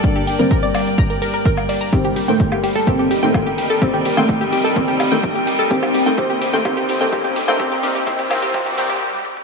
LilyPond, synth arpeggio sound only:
\new Staff \with { instrumentName = "Synth arpeggio sound" } { \time 4/4 \key c \dorian \tempo 4 = 127 r16 g'16 g''16 bes'16 bes'16 d''16 d''16 r16 bes''16 bes'16 bes'16 bes'16 bes'16 r16 d''16 bes''16 | g'16 g'16 g'16 g''16 r16 g'16 g'16 a'16 g'16 g'16 g'16 g''16 r16 g'16 g'16 a'16 | g'16 g'16 g'16 g''16 r16 g'16 g'16 a'16 g'16 g'16 g'16 g''16 r16 g'16 g'16 a'16 | g'16 g'16 g'16 g''16 g'16 g'16 g'16 g''16 g'16 g'16 g'16 g''16 g'16 g'16 g'16 g''16 |
g'16 g'16 g'16 g'16 g'16 g'16 g'16 g'16 g'16 g'16 g'16 g'16 r4 | }